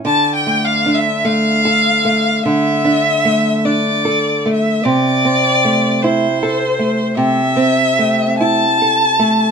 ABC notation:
X:1
M:4/4
L:1/16
Q:1/4=50
K:Dm
V:1 name="Violin"
a g f e f4 e4 d3 e | d4 c4 e4 a4 |]
V:2 name="Nylon-string guitar"
(3D,2 A,2 D2 (3A,2 A2 A,2 (3D,2 D2 A,2 (3D2 A2 A,2 | (3C,2 C2 A,2 (3E2 A2 A,2 (3C,2 C2 A,2 (3E2 A2 A,2 |]